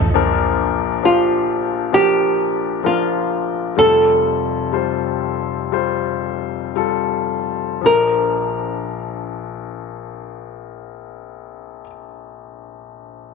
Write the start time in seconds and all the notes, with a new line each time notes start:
Already playing: A1 F3 D#4 A4
0.14 A#1 A#2 F3 D4 A#4
1.03 F3 D4 F4 G4
1.93 F3 D4 G4 A#4
2.83 F3 D4 F4 A#4
3.77 F1 F2 G3 F4 A4
4.73 G3 F4 C5
5.72 G3 F4 C5
6.76 G3 F4 A4
7.81 A#1 F3 D4
7.86 A#4